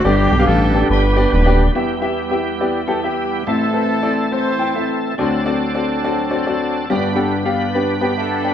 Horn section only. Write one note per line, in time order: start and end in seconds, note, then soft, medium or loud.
0.05 0.86 B3 medium
0.05 0.47 D4 medium
0.05 0.47 G4 loud
0.47 0.90 D4 medium
0.47 0.90 A4 loud
0.90 1.32 D4 medium
0.90 1.32 G4 medium
0.90 1.30 B4 medium
1.33 1.73 D4 medium
1.33 1.73 G4 medium
1.33 1.65 B4 medium
3.04 3.44 B3 medium
3.04 3.44 E4 soft
3.04 3.44 G4 medium
3.47 4.29 C4 medium
3.47 4.29 E4 medium
3.47 4.32 A4 medium
4.33 5.15 E4 medium
4.33 5.14 A4 medium
4.33 5.02 C5 medium
8.19 8.54 D4 medium
8.19 8.54 A4 medium